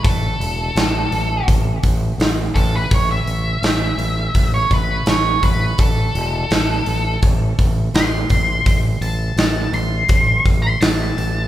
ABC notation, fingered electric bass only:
X:1
M:4/4
L:1/8
Q:1/4=84
K:Edor
V:1 name="Fingered electric bass" clef=bass
A,,, E,,, A,,, A,,, A,,, A,,, A,,, A,,, | A,,, A,,, A,,, A,,, A,,, A,,, A,,, A,,, | A,,, E,,, A,,, A,,, A,,, A,,, A,,, A,,, | A,,, A,,, A,,, A,,, A,,, A,,, A,,, A,,, |]